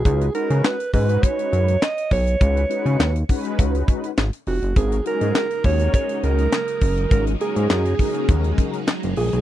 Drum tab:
HH |xxxx-xoxxxxx-xox|xxxx-xoxxxxx-xox|xxxx-xoxxxxx-xox|xxxx-xoxxxxx-xox|
CP |----x-------x---|----x-------x---|----x-------x---|----x-------x---|
SD |----o-------o---|----o-------o---|----o-------o---|----o-------o---|
BD |o-----o-o-----o-|o-----o-o-o-----|o-----o-o-----o-|o-----o-o-o-----|